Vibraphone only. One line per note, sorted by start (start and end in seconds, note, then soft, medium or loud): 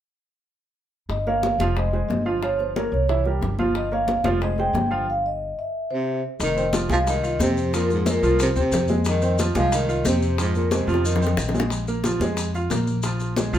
1.10 1.27 D#5 medium
1.27 1.58 F5 medium
1.77 2.23 D#5 medium
2.43 2.58 C#5 medium
2.60 2.75 C5 medium
2.77 2.93 A#4 medium
2.93 3.23 C#5 medium
3.76 3.83 D#5 medium
3.93 4.23 F5 medium
4.44 4.51 D#5 medium
4.60 5.10 G5 medium
5.10 5.17 F5 medium
5.26 5.59 D#5 medium
5.59 6.20 E5 medium
5.91 6.21 C5 medium
6.41 6.71 D#5 medium
6.92 6.99 F5 medium
7.08 7.42 D#5 medium
7.42 7.72 C5 medium
7.76 7.91 A#4 medium
7.92 8.08 G#4 medium
8.09 8.41 A#4 medium
8.42 8.49 C5 medium
8.58 8.88 C5 medium
9.07 9.37 D#5 medium
9.57 9.72 F5 medium
9.73 10.07 D#5 medium
10.07 10.37 C5 medium
10.40 10.55 G#4 medium
10.56 10.73 A#4 medium
10.72 11.03 C5 medium
11.05 11.51 D#5 medium